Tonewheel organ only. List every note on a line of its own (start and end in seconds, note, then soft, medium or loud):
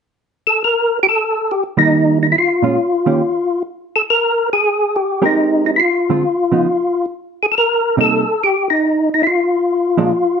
0.47 0.63 A4 medium
0.64 0.99 A#4 medium
1.03 1.07 G4 medium
1.09 1.52 A4 medium
1.51 1.64 G4 medium
1.79 2.18 D#4 medium
2.23 2.27 D#4 medium
2.32 2.36 E4 medium
2.38 3.63 F4 medium
3.96 4.02 A4 medium
4.10 4.50 A#4 loud
4.53 4.97 G#4 medium
4.96 5.25 G4 medium
5.26 5.65 D#4 medium
5.66 5.71 D#4 medium
5.76 5.81 E4 medium
5.76 7.06 F4 medium
7.43 7.46 G#4 medium
7.52 7.55 A4 medium
7.58 7.96 A#4 medium
8.01 8.43 A4 medium
8.44 8.68 G4 medium
8.70 9.09 D#4 medium
9.14 9.22 D#4 medium
9.23 9.27 E4 medium
9.23 10.40 F4 medium